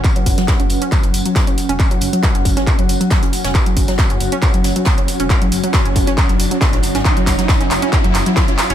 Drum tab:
HH |xxoxxxoxxxoxxxox|xxoxxxoxxxoxxxox|xxoxxxoxxxoxxxox|xxoxxxoxxxoxxxox|
TB |x-x-x-x-x-x-x-x-|x-x-x-x-x-x-x-x-|x-x-x-x-x-x-x-x-|x-x-x-x-x-x-x-x-|
CP |x---x---x---x---|x---x---x---x---|x---x---x---x---|x---x---x---x---|
SD |---oo-------o---|----o--o----o--o|---oo-----o-o---|----o--o----o--o|
BD |o-o-o---o---o---|o---o-o-o---o---|o-o-o---o---o---|o---o-o-o---o---|

HH |xxoxxxoxxxoxxxox|
TB |x-x-x-x-x-x-x-x-|
CP |x-x-x-x-x-x-x-x-|
SD |---oo-------o---|
BD |o-o-o---o---o---|